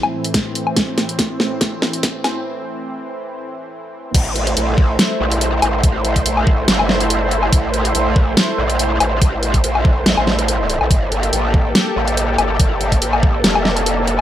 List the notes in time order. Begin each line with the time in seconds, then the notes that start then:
Already playing: A2 E3 C4
0.03 low woodblock
0.24 closed hi-hat
0.34 kick, snare, closed hi-hat
0.55 closed hi-hat
0.67 low woodblock
0.76 kick, snare, closed hi-hat
0.98 snare, closed hi-hat
1.09 closed hi-hat
1.19 kick, snare, closed hi-hat
1.40 snare
1.61 kick, snare, closed hi-hat
1.82 snare
1.93 closed hi-hat
2.03 kick, snare, closed hi-hat
2.24 snare, closed hi-hat, low woodblock
4.14 A1 A3 E4 C5, kick, closed hi-hat, crash
4.36 closed hi-hat
4.47 closed hi-hat
4.57 A#1, closed hi-hat
4.78 kick
4.99 snare, closed hi-hat
5.20 A#1
5.32 closed hi-hat
5.41 closed hi-hat
5.62 A1, closed hi-hat, low woodblock
5.83 A1, kick, closed hi-hat
6.05 closed hi-hat
6.16 kick, closed hi-hat
6.26 A#1, closed hi-hat
6.37 low woodblock
6.47 kick
6.68 G1, snare, closed hi-hat
6.79 low woodblock
6.89 snare
7.00 closed hi-hat
7.10 closed hi-hat
7.31 closed hi-hat
7.43 low woodblock
7.53 A1, kick, closed hi-hat
7.74 closed hi-hat
7.85 closed hi-hat
7.95 A#1, closed hi-hat
8.16 kick
8.37 snare, closed hi-hat
8.58 A#1
8.70 closed hi-hat
8.79 closed hi-hat
9.00 A1, closed hi-hat, low woodblock
9.22 A1, kick, closed hi-hat
9.43 closed hi-hat
9.54 kick, closed hi-hat
9.64 A#1, closed hi-hat
9.75 low woodblock
9.85 kick
10.06 A1, snare, closed hi-hat
10.17 A1, low woodblock
10.27 snare
10.39 closed hi-hat
10.48 closed hi-hat
10.70 closed hi-hat
10.81 A#1, low woodblock
10.90 G1 A#3 G4 A4, kick, closed hi-hat
11.12 closed hi-hat
11.23 closed hi-hat
11.33 A1, closed hi-hat
11.54 kick
11.75 snare, closed hi-hat
11.96 A1
12.08 closed hi-hat
12.17 closed hi-hat
12.38 G1, closed hi-hat, low woodblock
12.60 G1, kick, closed hi-hat
12.81 closed hi-hat
12.92 kick, closed hi-hat
13.02 A1, closed hi-hat
13.13 low woodblock
13.23 kick
13.44 F1, snare, closed hi-hat
13.55 low woodblock
13.65 snare
13.77 closed hi-hat
13.86 closed hi-hat
14.07 closed hi-hat